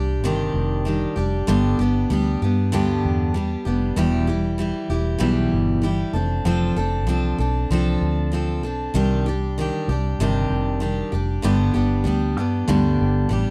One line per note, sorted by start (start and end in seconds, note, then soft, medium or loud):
0.00 0.22 C2 loud
0.00 0.24 G3 soft
0.00 0.23 D4 soft
0.00 0.22 G4 medium
0.22 0.48 G1 medium
0.22 0.85 C3 medium
0.22 0.84 D#3 loud
0.22 0.86 G3 medium
0.22 0.86 D4 medium
0.22 0.88 G4 medium
0.54 1.05 F1 loud
0.85 1.16 D#3 medium
0.85 1.17 G3 medium
0.85 1.16 D4 medium
0.85 1.15 G4 medium
1.16 1.42 F1 medium
1.16 1.47 G3 soft
1.16 1.48 D4 soft
1.16 1.47 G4 medium
1.47 1.73 G1 loud
1.47 1.78 G2 medium
1.47 1.79 D3 medium
1.47 1.79 G3 medium
1.47 1.79 B3 loud
1.47 1.79 D4 loud
1.47 1.78 G4 loud
1.78 2.04 G1 loud
1.78 2.10 B3 medium
1.78 2.10 D4 medium
1.78 2.10 G4 medium
1.83 2.09 G3 medium
2.10 2.35 D2 medium
2.10 2.41 G3 medium
2.10 2.41 B3 medium
2.10 2.41 D4 medium
2.10 2.41 G4 medium
2.42 2.73 G2 medium
2.42 2.72 G3 soft
2.42 2.72 B3 soft
2.42 2.72 D4 medium
2.42 2.72 G4 medium
2.72 2.98 D2 loud
2.72 3.34 G2 loud
2.72 3.34 D3 medium
2.72 3.34 G3 medium
2.72 3.35 B3 loud
2.72 3.34 D4 loud
2.72 3.37 G4 loud
3.05 3.55 E2 medium
3.34 3.65 G3 medium
3.34 3.65 B3 medium
3.34 3.65 D4 medium
3.34 3.64 G4 medium
3.65 3.91 F1 medium
3.65 3.96 G3 soft
3.65 3.97 B3 medium
3.65 3.97 D4 soft
3.65 3.96 G4 medium
3.96 4.71 E1 loud
3.96 4.27 E2 medium
3.96 4.27 B2 medium
3.96 4.28 E3 medium
3.96 4.28 G3 medium
3.96 4.27 E4 medium
3.96 4.26 G4 loud
4.27 4.57 E3 soft
4.27 4.58 G3 medium
4.27 4.59 E4 medium
4.27 4.58 G4 medium
4.58 4.89 E3 medium
4.58 4.90 G3 medium
4.58 4.89 E4 medium
4.58 4.89 G4 medium
4.90 5.15 E1 loud
4.90 5.19 E3 soft
4.90 5.19 G3 medium
4.90 5.19 E4 medium
4.90 5.19 G4 medium
5.18 5.46 B1 loud
5.18 5.82 E2 medium
5.18 5.82 B2 medium
5.18 5.80 E3 loud
5.18 5.82 G3 loud
5.18 5.83 E4 medium
5.18 5.83 G4 loud
5.52 6.03 G1 medium
5.82 6.13 E3 medium
5.82 6.14 G3 medium
5.82 6.14 E4 medium
5.82 6.13 G4 medium
6.13 6.39 F1 loud
6.13 6.44 C4 soft
6.13 6.45 D4 soft
6.13 6.45 A4 medium
6.45 6.70 F1 loud
6.45 6.76 F3 medium
6.45 6.76 C4 medium
6.45 6.76 D4 medium
6.45 6.75 A4 loud
6.76 7.07 F1 loud
6.76 7.07 C4 medium
6.76 7.08 D4 medium
6.76 7.07 A4 medium
7.07 7.33 C2 medium
7.07 7.38 F3 medium
7.07 7.39 C4 medium
7.07 7.39 D4 medium
7.07 7.37 A4 medium
7.38 7.64 B1 medium
7.38 7.70 C4 soft
7.38 7.70 D4 medium
7.38 7.70 A4 medium
7.70 7.96 C2 loud
7.70 8.30 F3 medium
7.70 8.33 C4 medium
7.70 8.34 D4 loud
7.70 8.33 A4 loud
8.01 8.64 D2 medium
8.32 8.63 F3 medium
8.32 8.64 C4 medium
8.32 8.63 D4 medium
8.32 8.62 A4 medium
8.63 8.89 B1 loud
8.63 8.94 C4 soft
8.63 8.95 D4 medium
8.63 8.94 A4 medium
8.94 9.70 C2 loud
8.94 9.25 C3 medium
8.94 9.26 D#3 medium
8.94 9.26 G3 loud
8.94 9.26 D4 loud
8.94 9.25 G4 loud
9.26 9.58 G3 soft
9.26 9.58 D4 medium
9.26 9.57 G4 medium
9.58 9.88 D#3 medium
9.58 9.89 G3 medium
9.58 9.90 D4 medium
9.58 9.88 G4 medium
9.88 10.13 C2 loud
9.88 10.20 D4 soft
9.88 10.19 G4 medium
9.92 10.20 G3 soft
10.19 10.44 G1 loud
10.19 10.82 C3 medium
10.19 10.79 D#3 medium
10.19 10.81 G3 medium
10.19 10.82 D4 loud
10.19 10.83 G4 medium
10.50 11.01 F1 medium
10.80 11.12 D#3 medium
10.80 11.12 G3 medium
10.80 11.13 D4 medium
10.80 11.11 G4 medium
11.12 11.38 F1 loud
11.12 11.42 G3 soft
11.12 11.43 D4 medium
11.12 11.43 G4 medium
11.42 11.69 G1 loud
11.42 11.74 G2 medium
11.42 11.75 D3 medium
11.42 11.75 G3 medium
11.42 11.74 B3 loud
11.42 11.73 D4 loud
11.42 11.73 G4 loud
11.74 12.07 G1 medium
11.74 12.03 G3 medium
11.74 12.04 B3 medium
11.74 12.05 D4 medium
11.74 12.05 G4 medium
12.04 12.37 D2 medium
12.04 12.36 G3 medium
12.04 12.37 B3 medium
12.04 12.37 D4 medium
12.04 12.36 G4 medium
12.37 12.62 G2 medium
12.37 12.67 G3 soft
12.37 12.68 B3 soft
12.37 12.68 D4 medium
12.37 12.68 G4 medium
12.68 13.01 D2 medium
12.68 13.30 G2 medium
12.68 13.31 D3 medium
12.68 13.29 G3 medium
12.68 13.30 B3 loud
12.68 13.30 D4 loud
12.68 13.32 G4 loud
12.99 13.25 G1 medium
13.29 13.45 A1 medium
13.29 13.50 G3 medium
13.29 13.50 B3 medium
13.29 13.50 D4 medium
13.29 13.50 G4 medium